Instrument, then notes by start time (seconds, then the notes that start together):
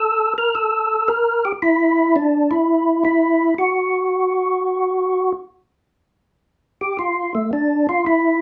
tonewheel organ
Already playing: A4
0.38 A#4
0.55 A4
1.08 A#4
1.45 G4
1.62 E4
2.16 D4
2.51 E4
3.05 E4
3.58 F#4
6.81 G4
6.99 F4
7.35 A3
7.53 D4
7.89 F4
8.06 E4